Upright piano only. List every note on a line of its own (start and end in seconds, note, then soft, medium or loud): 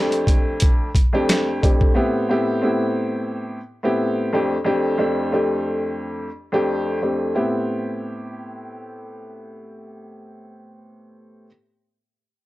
0.00 0.87 F2 medium
0.00 0.87 A3 medium
0.00 0.88 C4 medium
0.00 0.88 D4 medium
0.00 0.88 G4 loud
1.13 1.58 F2 medium
1.13 1.58 A3 medium
1.13 1.59 C4 medium
1.13 1.59 D4 medium
1.13 1.59 G4 loud
1.62 1.94 F2 medium
1.62 1.94 A3 medium
1.62 1.94 C4 medium
1.62 1.94 D4 medium
1.62 1.94 G4 medium
1.95 2.27 A2 medium
1.95 2.27 B3 medium
1.95 2.27 C4 medium
1.95 2.27 E4 medium
1.95 2.28 G4 loud
2.29 2.61 A2 medium
2.29 2.61 B3 medium
2.29 2.61 C4 medium
2.29 2.61 E4 medium
2.29 2.62 G4 loud
2.62 3.57 A2 medium
2.62 3.57 B3 medium
2.62 3.57 C4 medium
2.62 3.58 E4 medium
2.62 3.58 G4 medium
3.83 4.32 A2 medium
3.83 4.32 B3 medium
3.83 4.32 C4 medium
3.83 4.32 E4 medium
3.83 4.33 G4 loud
4.33 4.54 F2 medium
4.33 4.54 A3 medium
4.33 4.55 C4 medium
4.33 4.55 D4 medium
4.33 4.55 G4 loud
4.64 4.96 F2 medium
4.64 4.97 A3 medium
4.64 4.97 C4 medium
4.64 4.97 D4 medium
4.64 4.97 G4 loud
4.98 5.30 F2 medium
4.98 5.30 A3 medium
4.98 5.30 C4 medium
4.98 5.31 D4 medium
4.98 5.31 G4 medium
5.32 6.27 F2 medium
5.32 6.27 A3 medium
5.32 6.27 C4 medium
5.32 6.27 D4 medium
5.32 6.27 G4 loud
6.52 6.98 F2 medium
6.52 6.98 A3 medium
6.52 6.98 C4 medium
6.52 6.98 D4 medium
6.52 6.98 G4 loud
7.01 7.33 F2 medium
7.01 7.33 A3 medium
7.01 7.33 C4 medium
7.01 7.34 D4 medium
7.01 7.34 G4 medium
7.35 11.46 A2 medium
7.35 11.46 B3 medium
7.35 11.47 C4 medium
7.35 11.47 E4 medium
7.35 11.47 G4 medium